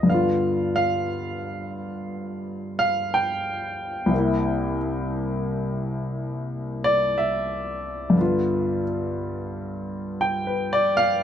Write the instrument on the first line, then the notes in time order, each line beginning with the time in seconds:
grand piano
Already playing: F4
0.03 G2 D3
0.09 B3 F5
0.14 F4
0.76 F5
2.79 F5
3.14 G5
4.06 C2 C3
4.14 A#3 E4
6.84 D5
7.18 E5
8.10 G2 D3
8.17 B3 F4
10.21 G5
10.47 B4
10.73 D5
10.97 F5